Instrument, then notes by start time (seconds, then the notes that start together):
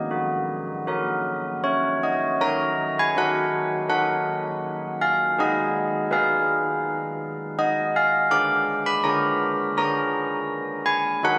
church bells
Already playing: D#4 D#5
0.11 F#4
0.87 F#4 A#4
1.64 C#5
2.03 D#5
2.41 D#4 F#4 A#4 A#5
2.99 G#5
3.17 D#4 F#4 A#4 F#5
3.89 D#4 F#4 A#4 F#5
5.01 F5
5.39 D#4 G#4 B4 D#5
6.11 D#4 G#4 B4 F5
7.59 D#5
7.96 F5
8.31 D4 G#4 A#4 D6
8.86 B5
9.04 D4 G#4 A#4 A#5
9.77 D4 G#4 A#4 A#5
10.86 G#5
11.23 D#4 F#4 A#4 F#5